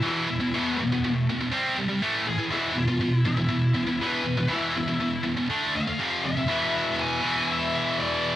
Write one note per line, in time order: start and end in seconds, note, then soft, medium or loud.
0.02 0.26 E2 medium
0.02 0.27 B2 medium
0.02 0.27 E3 loud
0.06 0.56 E4 medium
0.28 0.40 E2 medium
0.28 0.39 B2 medium
0.40 0.53 E2 medium
0.40 0.53 B2 medium
0.54 0.77 E2 medium
0.54 0.77 B2 medium
0.54 0.77 E3 loud
0.54 0.76 B3 medium
0.78 0.91 E2 medium
0.78 0.91 B2 medium
0.78 1.24 B3 medium
0.92 1.03 E2 medium
0.92 1.03 B2 medium
1.04 1.26 E2 medium
1.04 1.26 B2 medium
1.29 1.39 E2 medium
1.29 1.39 B2 medium
1.40 1.53 E2 medium
1.40 1.51 B2 medium
1.51 1.75 C3 medium
1.51 1.76 G3 medium
1.51 1.76 C4 loud
1.77 1.87 C3 medium
1.77 1.87 G3 medium
1.88 2.01 C3 medium
1.88 2.02 G3 medium
2.02 2.25 A2 medium
2.02 2.25 E3 medium
2.02 2.26 A3 loud
2.26 2.37 A2 medium
2.26 2.37 E3 medium
2.26 2.53 G#4 medium
2.38 2.51 A2 medium
2.38 2.51 E3 medium
2.51 2.74 E2 medium
2.51 2.73 B2 loud
2.51 2.75 E3 loud
2.51 2.78 E4 medium
2.74 2.87 E2 medium
2.74 2.86 B2 medium
2.78 3.15 F4 medium
2.88 3.00 E2 medium
2.88 3.00 B2 medium
3.01 3.23 E2 medium
3.01 3.23 B2 medium
3.15 3.26 E4 medium
3.25 3.37 E2 medium
3.25 3.36 B2 medium
3.25 3.97 E4 medium
3.37 3.47 E2 medium
3.37 3.48 B2 medium
3.49 3.72 E2 medium
3.49 3.72 B2 medium
3.75 3.87 E2 medium
3.75 3.86 B2 medium
3.87 4.00 E2 medium
3.87 4.00 B2 medium
4.01 4.24 E2 medium
4.01 4.23 B2 loud
4.01 4.25 E3 loud
4.01 4.52 B4 loud
4.24 4.37 E2 medium
4.24 4.36 B2 medium
4.37 4.47 E2 medium
4.37 4.49 B2 medium
4.48 4.72 E2 medium
4.48 4.73 B2 medium
4.48 4.74 E3 loud
4.53 4.75 E4 medium
4.76 4.87 E2 medium
4.76 4.86 B2 medium
4.76 5.23 E4 medium
4.88 4.99 E2 medium
4.88 5.00 B2 medium
5.00 5.22 E2 medium
5.00 5.22 B2 medium
5.23 5.35 E2 medium
5.23 5.35 B2 medium
5.37 5.49 E2 medium
5.37 5.49 B2 medium
5.49 5.73 D3 loud
5.49 5.73 A3 loud
5.49 5.73 D4 medium
5.74 5.86 D3 medium
5.74 5.86 A3 medium
5.74 6.25 F5 loud
5.87 5.99 D3 medium
5.87 5.99 A3 medium
5.99 6.22 F2 medium
5.99 6.23 C3 loud
5.99 6.22 F3 loud
6.25 6.35 F2 medium
6.25 6.35 C3 medium
6.25 6.95 E5 medium
6.37 6.48 F2 medium
6.37 6.49 C3 medium
6.48 7.25 E2 loud
6.48 7.22 B2 loud
6.48 7.21 E3 loud
7.00 7.50 G#5 loud
7.22 8.36 E2 medium
7.22 8.36 B2 medium
7.22 8.36 E3 medium
7.51 7.73 E5 loud
7.75 7.97 E5 medium
7.99 8.36 D5 loud